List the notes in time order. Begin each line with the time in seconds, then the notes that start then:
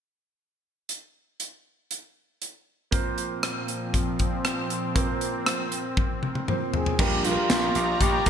0.89 closed hi-hat
1.40 closed hi-hat
1.91 closed hi-hat
2.42 closed hi-hat
2.91 A#2 F3 A#3 C4 F4 C5, kick, closed hi-hat
3.18 closed hi-hat
3.43 cross-stick, closed hi-hat
3.68 closed hi-hat
3.94 kick, closed hi-hat
4.19 kick, closed hi-hat
4.45 cross-stick, closed hi-hat
4.70 closed hi-hat
4.95 A#3 C4 F4 A#4, kick, closed hi-hat
5.03 C5
5.21 closed hi-hat
5.46 cross-stick, closed hi-hat
5.72 closed hi-hat
5.97 kick, high tom
6.23 mid tom
6.35 mid tom
6.48 A#3 C4 F4 C5, mid tom
6.74 G#4, floor tom
6.86 floor tom
6.99 A#1 A#2 F3 G3 A#3 D4 F4 G4 A#4 D5 A#5, kick, crash
7.24 F3 G3 A#3 D4 F4 G#4, closed hi-hat
7.31 A#4
7.50 A#1, snare, closed hi-hat
7.75 A#1, closed hi-hat
7.99 A#1 A#2 F3 G4, kick, closed hi-hat
8.05 A#3
8.26 A#1 G3 D4 F4 A#4, kick, closed hi-hat